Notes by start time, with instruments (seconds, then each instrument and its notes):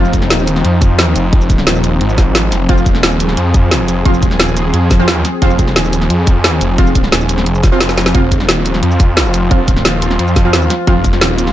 Already playing: detuned saw bass F1, analog synth pad F3 C4 D#4
0.05 shaker
0.13 kick, closed hi-hat, shaker
0.22 snare
0.30 detuned saw bass D#1, snare, closed hi-hat
0.39 shaker
0.47 closed hi-hat, shaker
0.56 snare
0.64 detuned saw bass F2, closed hi-hat
0.82 kick, closed hi-hat, shaker
0.99 snare, closed hi-hat
1.16 detuned saw bass F1, closed hi-hat, shaker
1.33 kick, closed hi-hat
1.41 shaker
1.50 kick, closed hi-hat, shaker
1.58 snare
1.67 detuned saw bass D#1, snare, closed hi-hat
1.75 shaker
1.84 closed hi-hat, shaker
2.01 detuned saw bass G#1, closed hi-hat
2.09 shaker
2.18 kick, snare, closed hi-hat, shaker
2.35 snare, closed hi-hat
2.52 detuned saw bass F1, snare, closed hi-hat, shaker
2.69 detuned saw bass F1, synth stab F3 C4 F4, analog synth pad G#4, kick, closed hi-hat
2.78 shaker
2.86 kick, closed hi-hat, shaker
2.95 snare
3.03 detuned saw bass D#1, snare, closed hi-hat
3.12 shaker
3.20 closed hi-hat, shaker
3.29 snare
3.37 detuned saw bass F2, closed hi-hat
3.54 kick, closed hi-hat, shaker
3.71 snare, closed hi-hat
3.88 detuned saw bass F1, closed hi-hat, shaker
4.05 synth stab F3 C4 F4, kick, closed hi-hat
4.14 shaker
4.23 kick, closed hi-hat, shaker
4.31 snare
4.40 detuned saw bass D#1, snare, closed hi-hat
4.48 shaker
4.57 closed hi-hat, shaker
4.74 detuned saw bass F2, closed hi-hat
4.91 kick, snare, closed hi-hat, shaker
4.99 synth stab F3 C4 F4
5.08 snare, closed hi-hat
5.25 snare, closed hi-hat, shaker
5.42 detuned saw bass F1, synth stab F3 C4 F4, kick, closed hi-hat
5.50 shaker
5.59 kick, closed hi-hat, shaker
5.68 snare
5.76 detuned saw bass D#1, snare, closed hi-hat
5.85 shaker
5.93 closed hi-hat, shaker
6.02 snare
6.10 detuned saw bass F2, closed hi-hat
6.27 kick, closed hi-hat, shaker
6.44 snare, closed hi-hat
6.61 detuned saw bass F1, closed hi-hat, shaker
6.78 synth stab F3 C4 F4, kick, closed hi-hat
6.87 shaker
6.95 kick, closed hi-hat, shaker
7.04 snare
7.12 detuned saw bass D#1, snare, closed hi-hat
7.21 shaker
7.29 closed hi-hat, shaker
7.38 snare
7.46 detuned saw bass F1, closed hi-hat
7.55 shaker
7.63 kick, snare, closed hi-hat, shaker
7.72 synth stab F3 C4 F4
7.81 snare, closed hi-hat
7.89 snare, shaker
7.98 snare, closed hi-hat, shaker
8.06 snare
8.15 detuned saw bass F1, analog synth pad F3 C4 F4, synth stab F3 C4 F4, kick, closed hi-hat
8.32 kick, closed hi-hat, shaker
8.40 snare
8.49 detuned saw bass D#1, snare, closed hi-hat
8.66 closed hi-hat, shaker
8.74 snare
8.83 detuned saw bass F2, closed hi-hat
8.91 shaker
9.00 kick, closed hi-hat, shaker
9.17 snare, closed hi-hat
9.25 shaker
9.34 detuned saw bass F1, closed hi-hat, shaker
9.51 synth stab F3 C4 F4, kick, closed hi-hat
9.68 kick, closed hi-hat, shaker
9.77 snare
9.85 detuned saw bass D#1, snare, closed hi-hat
10.02 closed hi-hat, shaker
10.11 snare
10.19 detuned saw bass F2, closed hi-hat
10.28 shaker
10.36 kick, snare, closed hi-hat, shaker
10.45 synth stab F3 C4 F4
10.53 snare, closed hi-hat
10.62 shaker
10.70 snare, closed hi-hat, shaker
10.87 detuned saw bass F1, synth stab F3 C4 F4, kick, closed hi-hat
11.04 kick, closed hi-hat, shaker
11.13 snare
11.21 detuned saw bass D#1, snare, closed hi-hat
11.38 closed hi-hat, shaker
11.47 snare